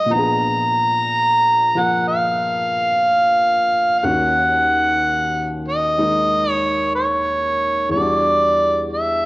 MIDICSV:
0, 0, Header, 1, 3, 480
1, 0, Start_track
1, 0, Tempo, 975610
1, 58, Time_signature, 4, 2, 24, 8
1, 4553, End_track
2, 0, Start_track
2, 0, Title_t, "Harmonica"
2, 0, Program_c, 0, 22
2, 0, Note_on_c, 0, 75, 90
2, 68, Note_on_c, 0, 82, 112
2, 75, Note_off_c, 0, 75, 0
2, 884, Note_on_c, 0, 78, 85
2, 891, Note_off_c, 0, 82, 0
2, 1020, Note_off_c, 0, 78, 0
2, 1023, Note_on_c, 0, 77, 92
2, 1960, Note_off_c, 0, 77, 0
2, 1960, Note_on_c, 0, 77, 63
2, 1992, Note_on_c, 0, 78, 94
2, 2000, Note_off_c, 0, 77, 0
2, 2712, Note_off_c, 0, 78, 0
2, 2796, Note_on_c, 0, 75, 86
2, 3204, Note_off_c, 0, 75, 0
2, 3204, Note_on_c, 0, 73, 86
2, 3402, Note_off_c, 0, 73, 0
2, 3421, Note_on_c, 0, 73, 70
2, 3879, Note_off_c, 0, 73, 0
2, 3894, Note_on_c, 0, 74, 81
2, 4357, Note_off_c, 0, 74, 0
2, 4389, Note_on_c, 0, 76, 79
2, 4553, Note_off_c, 0, 76, 0
2, 4553, End_track
3, 0, Start_track
3, 0, Title_t, "Upright piano"
3, 0, Program_c, 1, 0
3, 0, Control_c, 1, 64, 127
3, 0, Note_on_c, 1, 54, 38
3, 0, Note_on_c, 1, 58, 40
3, 0, Note_on_c, 1, 59, 40
3, 0, Note_on_c, 1, 68, 51
3, 30, Note_on_c, 1, 46, 42
3, 48, Note_on_c, 1, 53, 38
3, 52, Note_off_c, 1, 59, 0
3, 53, Note_off_c, 1, 54, 0
3, 59, Note_on_c, 1, 59, 41
3, 62, Note_off_c, 1, 58, 0
3, 65, Control_c, 1, 64, 0
3, 75, Note_off_c, 1, 68, 0
3, 76, Note_on_c, 1, 62, 44
3, 89, Note_on_c, 1, 68, 50
3, 164, Control_c, 1, 64, 127
3, 853, Note_off_c, 1, 53, 0
3, 861, Note_on_c, 1, 53, 43
3, 865, Note_on_c, 1, 58, 35
3, 1961, Note_off_c, 1, 46, 0
3, 1973, Note_off_c, 1, 53, 0
3, 1975, Note_off_c, 1, 58, 0
3, 1975, Note_off_c, 1, 59, 0
3, 1981, Control_c, 1, 64, 0
3, 1982, Note_on_c, 1, 39, 45
3, 1982, Note_on_c, 1, 51, 39
3, 1983, Note_on_c, 1, 58, 40
3, 1984, Note_off_c, 1, 62, 0
3, 1985, Note_on_c, 1, 66, 49
3, 1989, Note_on_c, 1, 61, 44
3, 1991, Note_off_c, 1, 68, 0
3, 2080, Control_c, 1, 64, 127
3, 2934, Note_off_c, 1, 51, 0
3, 2939, Note_off_c, 1, 58, 0
3, 2941, Note_on_c, 1, 51, 41
3, 2944, Note_on_c, 1, 56, 37
3, 2947, Note_on_c, 1, 58, 40
3, 2953, Note_on_c, 1, 63, 46
3, 3881, Note_on_c, 1, 40, 45
3, 3892, Note_on_c, 1, 52, 37
3, 3898, Note_off_c, 1, 51, 0
3, 3899, Note_off_c, 1, 39, 0
3, 3900, Note_off_c, 1, 56, 0
3, 3901, Note_off_c, 1, 58, 0
3, 3901, Note_off_c, 1, 66, 0
3, 3903, Note_off_c, 1, 61, 0
3, 3903, Control_c, 1, 64, 0
3, 3904, Note_off_c, 1, 63, 0
3, 3905, Note_on_c, 1, 55, 37
3, 3917, Note_on_c, 1, 62, 37
3, 3934, Note_on_c, 1, 66, 45
3, 4000, Control_c, 1, 64, 127
3, 4553, Note_off_c, 1, 40, 0
3, 4553, Note_off_c, 1, 52, 0
3, 4553, Note_off_c, 1, 55, 0
3, 4553, Note_off_c, 1, 62, 0
3, 4553, Note_off_c, 1, 66, 0
3, 4553, End_track
0, 0, End_of_file